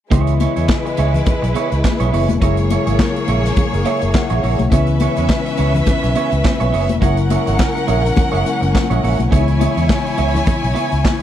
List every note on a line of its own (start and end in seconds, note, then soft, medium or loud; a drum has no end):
0.10 0.45 C#2 loud
0.10 2.08 C#3 medium
0.10 2.08 E3 medium
0.10 2.37 G#3 medium
0.10 2.09 G#3 medium
0.10 0.32 B3 medium
0.10 2.09 B3 medium
0.10 2.37 E4 medium
0.10 0.32 E4 medium
0.10 2.10 E4 medium
0.10 0.33 G#4 medium
0.10 2.37 B4 medium
0.10 0.33 C#5 medium
0.10 kick medium
0.10 closed hi-hat medium
0.10 muted conga soft
0.27 closed hi-hat soft
0.40 0.51 B3 medium
0.40 0.52 E4 medium
0.40 0.52 G#4 medium
0.40 0.52 C#5 medium
0.40 closed hi-hat medium
0.40 muted conga medium
0.56 0.66 E2 medium
0.56 0.66 B3 soft
0.56 0.66 E4 medium
0.56 0.65 G#4 soft
0.56 0.65 C#5 medium
0.56 closed hi-hat soft
0.69 kick loud
0.69 snare medium
0.69 clap medium
0.69 high conga medium
0.85 muted clean electric guitar stroke soft
0.85 closed hi-hat soft
0.97 1.20 C#2 medium
0.97 1.12 B3 medium
0.97 1.12 E4 medium
0.97 1.13 G#4 medium
0.97 1.13 C#5 medium
0.97 closed hi-hat medium
1.14 muted clean electric guitar stroke soft
1.14 closed hi-hat soft
1.14 low conga medium
1.26 muted clean electric guitar stroke soft
1.26 kick loud
1.26 closed hi-hat medium
1.26 muted conga medium
1.26 low conga medium
1.42 1.53 B1 medium
1.42 muted clean electric guitar stroke soft
1.42 closed hi-hat soft
1.55 1.69 B3 medium
1.55 1.70 E4 medium
1.55 1.70 G#4 medium
1.55 1.70 C#5 loud
1.55 closed hi-hat medium
1.72 1.81 C#2 medium
1.72 closed hi-hat soft
1.84 muted clean electric guitar stroke soft
1.84 kick loud
1.84 snare loud
1.84 clap medium
1.84 high conga medium
2.00 2.10 B1 medium
2.00 2.10 B3 soft
2.00 2.09 E4 soft
2.00 2.09 G#4 soft
2.00 2.09 C#5 medium
2.00 closed hi-hat soft
2.12 2.29 F#1 medium
2.12 2.39 C#3 medium
2.12 2.41 E3 soft
2.12 2.40 G#3 medium
2.12 2.27 B3 medium
2.12 2.42 B3 soft
2.12 2.27 E4 medium
2.12 2.42 E4 medium
2.12 2.28 G#4 medium
2.12 2.28 C#5 medium
2.12 open hi-hat medium
2.29 2.39 E1 medium
2.29 muted clean electric guitar stroke soft
2.29 closed hi-hat soft
2.29 high conga medium
2.40 2.75 F#1 medium
2.40 4.67 C#3 medium
2.40 4.67 F#3 medium
2.40 4.68 G#3 medium
2.40 4.68 A#3 medium
2.40 2.56 A#3 medium
2.40 4.68 A#3 medium
2.40 2.56 E4 medium
2.40 4.68 E4 medium
2.40 4.68 G#4 medium
2.40 2.56 G#4 medium
2.40 4.68 C#5 medium
2.40 2.57 C#5 medium
2.40 kick medium
2.40 closed hi-hat medium
2.40 muted conga medium
2.57 closed hi-hat soft
2.70 2.82 A#3 medium
2.70 2.82 E4 medium
2.70 2.82 G#4 medium
2.70 2.82 C#5 medium
2.70 closed hi-hat medium
2.70 muted conga medium
2.87 2.96 G#1 medium
2.87 2.96 A#3 soft
2.87 2.96 E4 medium
2.87 2.95 G#4 medium
2.87 2.95 C#5 medium
2.87 closed hi-hat soft
2.99 kick loud
2.99 snare medium
2.99 clap medium
2.99 high conga medium
3.15 muted clean electric guitar stroke soft
3.15 closed hi-hat soft
3.28 3.50 A#1 medium
3.28 3.42 A#3 medium
3.28 3.43 E4 medium
3.28 3.43 G#4 medium
3.28 3.43 C#5 medium
3.28 closed hi-hat medium
3.44 muted clean electric guitar stroke soft
3.44 snare soft
3.44 closed hi-hat soft
3.56 muted clean electric guitar stroke soft
3.56 kick loud
3.56 closed hi-hat medium
3.56 muted conga medium
3.56 low conga medium
3.73 3.83 F#1 medium
3.73 muted clean electric guitar stroke soft
3.73 closed hi-hat soft
3.85 4.00 A#3 medium
3.85 4.00 E4 medium
3.85 4.00 G#4 loud
3.85 4.00 C#5 medium
3.85 4.00 C#5 loud
3.85 closed hi-hat medium
3.85 muted conga soft
4.01 4.12 F#1 medium
4.01 4.13 E5 medium
4.01 muted clean electric guitar stroke medium
4.01 closed hi-hat soft
4.14 4.68 F#5 medium
4.14 muted clean electric guitar stroke soft
4.14 kick medium
4.14 snare loud
4.14 clap medium
4.14 high conga medium
4.30 4.40 A#1 medium
4.30 4.40 A#3 soft
4.30 4.40 E4 medium
4.30 4.39 G#4 medium
4.30 4.39 C#5 medium
4.30 closed hi-hat soft
4.43 4.55 A#1 medium
4.43 4.57 A#3 medium
4.43 4.58 E4 medium
4.43 4.58 G#4 medium
4.43 4.58 C#5 medium
4.43 open hi-hat soft
4.59 4.69 B1 medium
4.59 muted clean electric guitar stroke soft
4.59 closed hi-hat soft
4.59 high conga medium
4.70 5.06 C#2 loud
4.70 6.97 C#3 medium
4.70 6.98 E3 medium
4.70 6.98 G#3 medium
4.70 6.98 B3 medium
4.70 4.86 B3 medium
4.70 6.98 C#4 medium
4.70 4.87 E4 medium
4.70 6.99 E4 medium
4.70 4.87 G#4 medium
4.70 6.98 B4 medium
4.70 4.87 C#5 medium
4.70 6.98 E5 medium
4.70 kick loud
4.70 closed hi-hat medium
4.70 muted conga medium
4.87 closed hi-hat soft
5.00 5.12 B3 medium
5.00 5.12 E4 medium
5.00 5.12 G#4 medium
5.00 5.12 C#5 medium
5.00 closed hi-hat medium
5.00 muted conga medium
5.16 5.27 E2 medium
5.16 5.26 B3 soft
5.16 5.26 E4 medium
5.16 5.26 G#4 medium
5.16 5.25 C#5 medium
5.16 closed hi-hat soft
5.29 kick medium
5.29 snare loud
5.29 clap medium
5.29 high conga medium
5.46 muted clean electric guitar stroke soft
5.46 closed hi-hat soft
5.57 5.80 C#2 medium
5.57 5.72 B3 medium
5.57 5.73 E4 medium
5.57 5.73 G#4 medium
5.57 5.73 C#5 medium
5.57 closed hi-hat medium
5.75 muted clean electric guitar stroke soft
5.75 closed hi-hat medium
5.75 low conga medium
5.86 muted clean electric guitar stroke soft
5.86 kick loud
5.86 closed hi-hat medium
5.86 muted conga medium
5.86 low conga medium
6.03 6.13 B1 medium
6.03 muted clean electric guitar stroke soft
6.03 closed hi-hat soft
6.15 6.30 B3 medium
6.15 6.30 E4 medium
6.15 6.30 G#4 medium
6.15 6.30 C#5 medium
6.15 closed hi-hat medium
6.15 muted conga soft
6.32 6.42 C#2 medium
6.32 muted clean electric guitar stroke soft
6.32 closed hi-hat soft
6.44 muted clean electric guitar stroke soft
6.44 kick loud
6.44 snare medium
6.44 clap medium
6.44 high conga medium
6.60 6.70 B1 medium
6.60 6.70 B3 medium
6.60 6.70 E4 medium
6.60 6.69 G#4 medium
6.60 6.69 C#5 medium
6.60 closed hi-hat soft
6.72 6.90 F#1 medium
6.72 6.87 B3 medium
6.72 6.87 E4 medium
6.72 6.88 G#4 medium
6.72 6.87 C#5 medium
6.72 open hi-hat soft
6.89 6.99 E1 medium
6.89 muted clean electric guitar stroke soft
6.89 closed hi-hat medium
6.89 high conga medium
7.00 7.36 F#1 medium
7.00 8.42 C#3 medium
7.00 8.42 F#3 medium
7.00 8.43 G#3 medium
7.00 7.16 A#3 medium
7.00 8.43 A#3 medium
7.00 9.28 C#4 medium
7.00 7.16 E4 medium
7.00 8.44 E4 medium
7.00 7.16 G#4 medium
7.00 9.28 A#4 medium
7.00 7.17 C#5 medium
7.00 9.28 F#5 medium
7.00 kick medium
7.00 closed hi-hat medium
7.00 muted conga medium
7.17 closed hi-hat soft
7.30 7.42 A#3 medium
7.30 7.42 E4 medium
7.30 7.42 G#4 medium
7.30 7.42 C#5 medium
7.30 closed hi-hat medium
7.30 muted conga medium
7.46 7.57 G#1 medium
7.46 7.56 A#3 soft
7.46 7.56 E4 medium
7.46 7.56 G#4 medium
7.46 7.55 C#5 medium
7.46 closed hi-hat soft
7.59 kick loud
7.59 snare loud
7.59 clap medium
7.59 high conga medium
7.75 muted clean electric guitar stroke soft
7.75 closed hi-hat soft
7.87 8.10 A#1 medium
7.87 8.02 A#3 medium
7.87 8.02 E4 medium
7.87 8.02 G#4 medium
7.87 8.03 C#5 medium
7.87 closed hi-hat medium
8.04 muted clean electric guitar stroke soft
8.04 closed hi-hat soft
8.16 muted clean electric guitar stroke soft
8.16 kick loud
8.16 closed hi-hat medium
8.16 muted conga medium
8.16 low conga medium
8.32 8.43 F#1 medium
8.32 8.44 A#3 medium
8.32 8.44 E4 medium
8.32 8.44 G#4 medium
8.32 8.44 C#5 medium
8.32 closed hi-hat soft
8.45 9.29 C#3 soft
8.45 9.32 F#3 soft
8.45 9.31 G#3 soft
8.45 9.32 A#3 soft
8.45 9.32 E4 medium
8.45 muted clean electric guitar stroke soft
8.45 closed hi-hat medium
8.61 8.71 F#1 medium
8.61 muted clean electric guitar stroke soft
8.61 closed hi-hat soft
8.74 muted clean electric guitar stroke soft
8.74 kick medium
8.74 snare medium
8.74 clap medium
8.74 high conga medium
8.90 9.00 A#1 medium
8.90 9.00 A#3 soft
8.90 9.00 E4 medium
8.90 9.00 G#4 medium
8.90 8.99 C#5 medium
8.90 closed hi-hat soft
9.03 9.16 A#1 medium
9.03 9.18 A#3 medium
9.03 9.18 E4 medium
9.03 9.18 G#4 medium
9.03 9.18 C#5 medium
9.03 open hi-hat soft
9.19 9.29 B1 medium
9.19 muted clean electric guitar stroke soft
9.19 closed hi-hat soft
9.19 high conga medium
9.30 9.66 C#2 medium
9.30 11.22 C#3 medium
9.30 11.22 E3 medium
9.30 11.22 G#3 medium
9.30 9.46 B3 medium
9.30 11.22 B3 medium
9.30 9.40 D#4 medium
9.30 9.46 E4 medium
9.30 11.22 E4 medium
9.30 9.46 G#4 medium
9.30 11.22 C#5 medium
9.30 9.47 C#5 medium
9.30 11.22 G#5 medium
9.30 kick medium
9.30 closed hi-hat medium
9.30 muted conga medium
9.40 11.22 E4 medium
9.48 closed hi-hat soft
9.60 9.72 B3 medium
9.60 9.72 E4 medium
9.60 9.72 G#4 medium
9.60 9.72 C#5 medium
9.60 closed hi-hat medium
9.60 muted conga medium
9.76 9.87 E2 medium
9.76 9.86 B3 soft
9.76 9.86 E4 soft
9.76 9.86 G#4 soft
9.76 9.85 C#5 medium
9.76 closed hi-hat soft
9.89 kick loud
9.89 snare loud
9.89 clap medium
9.89 high conga medium
10.05 muted clean electric guitar stroke soft
10.05 closed hi-hat soft
10.18 10.40 C#2 medium
10.18 10.32 B3 medium
10.18 10.33 E4 medium
10.18 10.33 G#4 medium
10.18 10.32 C#5 medium
10.18 closed hi-hat medium
10.33 muted clean electric guitar stroke soft
10.33 snare soft
10.33 closed hi-hat soft
10.33 low conga medium
10.46 muted clean electric guitar stroke soft
10.46 kick loud
10.46 closed hi-hat medium
10.46 muted conga medium
10.46 low conga medium
10.62 10.73 B1 medium
10.62 muted clean electric guitar stroke soft
10.62 closed hi-hat soft
10.74 10.89 B3 medium
10.74 10.90 E4 medium
10.74 10.90 G#4 medium
10.74 10.89 C#5 medium
10.74 closed hi-hat medium
10.74 muted conga soft
10.91 11.02 C#2 medium
10.91 muted clean electric guitar stroke soft
10.91 closed hi-hat soft
11.03 muted clean electric guitar stroke soft
11.03 kick loud
11.03 snare loud
11.03 clap medium
11.03 high conga medium
11.19 muted clean electric guitar stroke soft